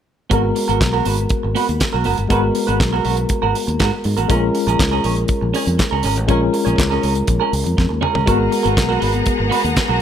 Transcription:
0.30 fingered electric bass G#1, tine electric piano G#3 B3 F#4 A#4, clean electric guitar B3 F#4 A#4, kick, closed hi-hat
0.43 muted clean electric guitar stroke
0.55 muted clean electric guitar stroke, open hi-hat
0.68 fingered electric bass G#1, clean electric guitar B3 F#4 A#4, closed hi-hat
0.81 fingered electric bass B1, kick, snare, clap, closed hi-hat
0.93 clean electric guitar B3 F#4 A#4
1.05 fingered electric bass G#1, clean electric guitar B3 F#4 B4, open hi-hat
1.18 muted clean electric guitar stroke, closed hi-hat
1.29 kick, closed hi-hat
1.43 fingered electric bass G#1, muted clean electric guitar stroke
1.55 clean electric guitar B3 F#4 B4, open hi-hat
1.67 fingered electric bass D#2, muted clean electric guitar stroke, closed hi-hat
1.80 muted clean electric guitar stroke, kick, snare, clap, closed hi-hat
1.93 fingered electric bass B1, clean electric guitar B3 F#4 A#4
2.04 fingered electric bass F#1, clean electric guitar B3 F#4 A#4, open hi-hat
2.18 fingered electric bass G1, muted clean electric guitar stroke, closed hi-hat
2.29 fingered electric bass G#1, tine electric piano G#3 B3 F#4 A#4, clean electric guitar B3 F#4 B4, kick, closed hi-hat
2.43 muted clean electric guitar stroke
2.55 muted clean electric guitar stroke, open hi-hat
2.67 fingered electric bass G#1, clean electric guitar B3 F#4 B4, closed hi-hat
2.80 fingered electric bass B1, kick, snare, clap, closed hi-hat
2.93 clean electric guitar B3 F#4 A#4
3.05 fingered electric bass B1, clean electric guitar B3 F#4 A#4, open hi-hat
3.17 muted clean electric guitar stroke, closed hi-hat
3.29 muted clean electric guitar stroke, kick, closed hi-hat
3.42 fingered electric bass G#1, clean electric guitar B3 F#4 A#4
3.55 muted clean electric guitar stroke, open hi-hat
3.67 fingered electric bass D#2, muted clean electric guitar stroke, closed hi-hat
3.80 fingered electric bass G#2, clean electric guitar B3 F#4 A#4, kick, snare, clap, closed hi-hat
4.04 fingered electric bass G#2, muted clean electric guitar stroke, open hi-hat
4.17 fingered electric bass A1, clean electric guitar B3 F#4 A#4, closed hi-hat
4.28 fingered electric bass A#1, tine electric piano G#3 B3 F4 A#4, clean electric guitar C#4 G#4 A#4, kick, closed hi-hat
4.35 tine electric piano C#4
4.42 muted clean electric guitar stroke
4.55 muted clean electric guitar stroke, open hi-hat
4.67 fingered electric bass A#1, clean electric guitar C#4 G#4 A#4, closed hi-hat
4.79 fingered electric bass C#2, kick, snare, clap, closed hi-hat
4.91 clean electric guitar C#4 G#4 A#4
5.04 fingered electric bass A#1, clean electric guitar C#4 G#4 C#5, open hi-hat
5.16 muted clean electric guitar stroke, closed hi-hat
5.28 kick, closed hi-hat
5.41 fingered electric bass A#1, muted clean electric guitar stroke
5.54 clean electric guitar C#4 G#4 C#5, open hi-hat
5.66 fingered electric bass F2, muted clean electric guitar stroke, closed hi-hat
5.78 muted clean electric guitar stroke, kick, snare, clap, closed hi-hat
5.91 fingered electric bass C#2, clean electric guitar C#4 G#4 A#4
6.03 fingered electric bass G#1, clean electric guitar C#4 G#4 A#4, open hi-hat
6.16 fingered electric bass A1, muted clean electric guitar stroke, closed hi-hat
6.28 fingered electric bass A#1, tine electric piano G#3 C#4 F4 A#4, clean electric guitar C#4 G#4 C#5, kick, closed hi-hat
6.41 muted clean electric guitar stroke
6.53 muted clean electric guitar stroke, open hi-hat
6.65 fingered electric bass A#1, clean electric guitar C#4 G#4 C#5, closed hi-hat
6.77 fingered electric bass C#2, muted clean electric guitar stroke, kick, snare, clap, closed hi-hat
6.90 clean electric guitar C#4 G#4 A#4
7.02 fingered electric bass C#2, clean electric guitar C#4 G#4 A#4, open hi-hat
7.15 muted clean electric guitar stroke, closed hi-hat
7.27 fingered electric bass A#1, muted clean electric guitar stroke, kick, closed hi-hat
7.40 clean electric guitar C#4 G#4 A#4
7.52 fingered electric bass C#2, muted clean electric guitar stroke, open hi-hat
7.64 fingered electric bass F2, muted clean electric guitar stroke, closed hi-hat
7.77 fingered electric bass F2, muted clean electric guitar stroke, kick, snare
7.89 fingered electric bass D#2, muted clean electric guitar stroke
8.01 clean electric guitar C#4 G#4 A#4, mid tom
8.13 fingered electric bass C#2, clean electric guitar C#4 G#4 A#4, floor tom
8.26 fingered electric bass G#1, tine electric piano G#3 B3 F#4 A#4, clean electric guitar B3 F#4 A#4, string section B3 G#4 F#5 A#5, kick, closed hi-hat
8.39 muted clean electric guitar stroke
8.51 muted clean electric guitar stroke, open hi-hat
8.63 fingered electric bass G#1, clean electric guitar B3 F#4 A#4, closed hi-hat
8.76 fingered electric bass B1, muted clean electric guitar stroke, kick, snare, clap, closed hi-hat
8.89 clean electric guitar B3 F#4 A#4
9.00 fingered electric bass G#1, clean electric guitar B3 F#4 B4, open hi-hat
9.13 muted clean electric guitar stroke, closed hi-hat
9.26 kick, closed hi-hat
9.38 fingered electric bass G#1, muted clean electric guitar stroke
9.50 clean electric guitar B3 F#4 B4, open hi-hat
9.64 fingered electric bass D#2, closed hi-hat
9.75 muted clean electric guitar stroke, kick, snare, clap, closed hi-hat
9.88 fingered electric bass B1, clean electric guitar B3 F#4 A#4

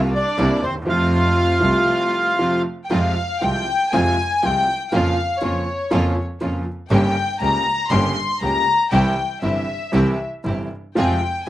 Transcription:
0.13 bandoneon D4 D5, violin section D5
0.37 grand piano C2 C3 G3 A#3 E4, double bass C2, string section A#3 C4 E4
0.62 double bass D#2, bandoneon C4 C5, violin section C5
0.70 grand piano D2
0.76 grand piano D#2
0.82 grand piano E2 C3
0.87 double bass F2, grand piano F2 F3 A3 F4, string section A3 C4 F4, bandoneon F4 F5, violin section F5
1.60 grand piano C2 C3 F3 A3 F4, double bass C2, string section A3 C4 F4
2.39 grand piano F2 C3 F3 A3 F4, string section A3 C4 F4
2.84 violin section G5
2.90 double bass F2, grand piano F2 C3 F3 G#3 F4, string section G#3 C4 F4, violin section F5
3.41 grand piano C2 C3 F3 G#3 F4, double bass C2, string section G#3 C4 F4, violin section G5
3.91 double bass F2, grand piano F2 C3 F3 G#3 F4, string section G#3 C4 F4, violin section G#5
4.42 grand piano C2 C3 F3 G#3 F4, double bass C2, string section G#3 C4 F4, violin section G5
4.86 violin section G5
4.92 double bass F2, grand piano F2 C#3 F3 A#3 F4, string section A#3 C#4 F4, violin section F5
5.41 double bass F2, grand piano F2 C#3 F3 A#3 F4, string section A#3 C#4 F4, violin section C#5
5.90 grand piano F2 C#3 F3 A#3 F4, double bass F2, string section A#3 C#4 F4
6.40 double bass F2, grand piano F2 C#3 F3 A#3 F4, string section A#3 C#4 F4
6.91 double bass G1, grand piano G1 G2 C#3 G3 A#3 G4, string section A#3 C#4 G4, violin section G5
7.40 double bass C#2, grand piano C#2 C#3 G3 A#3 G4, string section A#3 C#4 G4, violin section A#5
7.90 double bass G1, grand piano G1 G2 C#3 G3 A#3 G4, string section A#3 C#4 G4, violin section C6
8.41 double bass C#2, grand piano C#2 C#3 G3 A#3 G4, string section A#3 C#4 G4, violin section A#5
8.91 double bass C2, grand piano C2 C3 E3 G3 E4, string section C4 E4 G4, violin section G5
9.42 grand piano G1 G2 C3 E3 G3 E4, double bass G1, string section C4 E4 G4, violin section E5
9.92 grand piano C2 C3 E3 G3 E4, double bass C2, string section C4 E4 G4
10.44 grand piano G1 G2 C3 E3 G3 E4, double bass G1, string section C4 E4 G4
10.95 grand piano F2 C3 F3 G#3 F4, double bass F2, string section C4 F4 G#4, violin section G5

